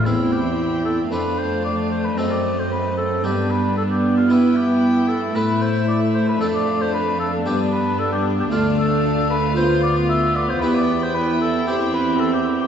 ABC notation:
X:1
M:4/4
L:1/16
Q:1/4=114
K:C
V:1 name="Violin section"
g8 f8 | ^d8 =d8 | g8 e8 | f8 d8 |
f16 | g16 |]
V:2 name="Oboe"
E2 G4 A2 B2 c2 d2 c B | A d2 c B2 A2 G2 B2 A G2 F | E2 G4 A2 B2 c2 d2 c B | A d2 c B2 A2 G2 B2 A G2 G |
F2 A4 B2 c2 d2 e2 d c | B d2 c B2 A2 G2 B2 A G2 G |]
V:3 name="Violin section"
E8 D8 | C8 D8 | E16 | D16- |
D8 F8 | E16 |]
V:4 name="Harpsichord"
[CE]8 [A,CD]8 | [A,C^D]8 [B,=D]8 | [B,E]8 [A,EA]8 | [A,DA]8 [B,DG]8 |
[A,DF]8 [B,F]8 | [B,EG]8 [CEG]8 |]
V:5 name="Harpsichord" clef=bass
E,,8 F,,8 | ^F,,8 G,,8- | G,,8 A,,8 | F,,8 G,,8 |
D,,16 | E,,16 |]
V:6 name="Viola section"
C8 A,8- | A,8 B,8- | B,8 A,8- | A,8 B,8 |
A,8 B,8- | B,8 C8 |]
V:7 name="Cello section" clef=bass
E,,8 F,,8 | ^F,,8 G,,8- | G,,8 A,,8 | F,,8 G,,8 |
D,,16 | E,,16 |]